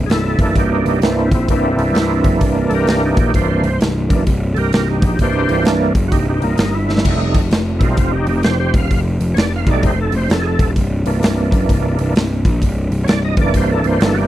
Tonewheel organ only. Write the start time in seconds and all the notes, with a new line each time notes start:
0.06 E4 G#4
0.11 A4
0.25 E4 A4
0.39 E3 A#3 D4 E4 A4
0.56 D#4 G4
0.72 D#4 G4
0.88 D#4 G4
1.03 E3 A#3 C4 D4 E4
1.18 C4 E4
1.34 C4 E4
1.50 E3 A#3 C4 D4 E4
2.70 A4
2.74 G4 A#4
2.88 G4 A#4
3.04 D#4 G4
3.19 D#4 G4
3.34 E3 A#3 D4 C5
4.09 E3 A#3 D4
4.54 G4 A4
4.59 A#4
4.73 G4 A#4
4.88 D#4 G4
5.04 D#4 G4
5.21 E3 A#3 D4 G4 C5
6.08 D#4 F#4 G4
6.29 D#4 G4
6.43 A#3 D#4
6.59 A#3 D#4
6.75 E4
7.07 G3 A3 D#4
7.79 G3 A3 C4 E4
7.84 D#4 F4
7.98 C4 F4
8.11 D#4 G4
8.29 D#4 G4
8.43 G4 C5
8.60 G4 C5
8.76 F5
9.34 C#5
9.38 D5
9.56 F5
9.68 G3 A3 D#4 D5
9.86 C5
10.01 A4
10.16 C5
10.32 A4
10.42 G#4
10.47 A4
11.06 E3 A#3 D4
12.00 E3 A#3 D4
13.04 C#5
13.08 D5
13.25 D#5
13.39 E3 A#3 D4 D5
13.57 C5
13.72 A4
13.87 C5
14.02 A4
14.13 F#4
14.18 G4